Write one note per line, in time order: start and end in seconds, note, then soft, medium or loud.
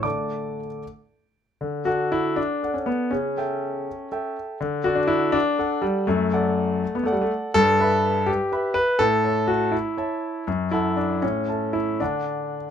0.03 0.58 D3 soft
0.03 0.66 A3 soft
0.03 0.66 D4 soft
0.03 0.78 D5 soft
0.03 0.78 A5 soft
0.03 0.82 D6 medium
1.61 1.86 D3 medium
1.85 2.11 F#4 medium
1.85 2.58 A4 soft
1.85 2.59 D5 soft
1.85 2.59 F#5 soft
2.12 2.37 E4 medium
2.36 2.74 D4 medium
2.63 3.08 A4 soft
2.63 3.09 D5 soft
2.63 3.09 F#5 soft
2.74 2.87 C#4 medium
2.86 3.12 B3 medium
3.11 3.37 C#3 medium
3.11 4.36 C#4 medium
3.37 4.08 A4 soft
3.37 4.08 E5 soft
3.37 4.08 G5 soft
4.12 4.57 A4 soft
4.12 4.58 E5 soft
4.12 4.58 G5 soft
4.61 4.85 D3 medium
4.84 4.97 F#4 medium
4.84 5.55 A4 soft
4.84 5.55 D5 medium
4.84 5.56 F#5 medium
4.95 5.09 D4 medium
5.07 5.33 E4 medium
5.32 5.83 D4 loud
5.59 6.04 A4 medium
5.59 6.05 D5 medium
5.59 6.05 F#5 medium
5.82 6.08 G3 medium
6.07 6.32 F#2 medium
6.07 6.94 A3 medium
6.33 7.02 A4 medium
6.33 7.02 D5 medium
6.33 7.03 F#5 medium
6.95 7.04 B3 medium
7.03 7.13 A3 medium
7.03 7.51 A4 medium
7.03 7.51 D5 medium
7.03 7.51 F#5 medium
7.12 7.21 G3 medium
7.21 7.30 A3 medium
7.54 7.79 G2 medium
7.54 8.28 A4 loud
7.80 8.48 B4 medium
7.80 8.49 E5 medium
7.80 8.49 B5 medium
8.26 8.76 G4 medium
8.52 8.73 B4 medium
8.52 8.97 E5 soft
8.52 8.97 B5 medium
8.74 9.00 B4 loud
8.99 9.24 A2 medium
8.99 9.49 A4 loud
9.25 9.94 C#5 medium
9.25 9.94 E5 medium
9.25 9.94 A5 medium
9.48 9.73 F#4 medium
9.72 10.46 E4 medium
9.97 10.43 C#5 soft
9.97 10.43 E5 soft
9.97 10.44 A5 medium
10.47 10.72 F#2 medium
10.71 10.97 E4 medium
10.71 11.19 A4 soft
10.71 11.19 F#5 soft
10.71 11.19 A5 medium
10.97 11.22 D4 medium
11.22 11.48 A2 medium
11.22 11.74 C#4 medium
11.48 11.96 A4 soft
11.48 11.97 E5 soft
11.48 11.97 A5 soft
11.73 12.00 E4 medium
12.00 12.56 D3 soft
12.00 12.70 D4 medium
12.00 12.64 F#5 soft
12.00 12.64 A5 soft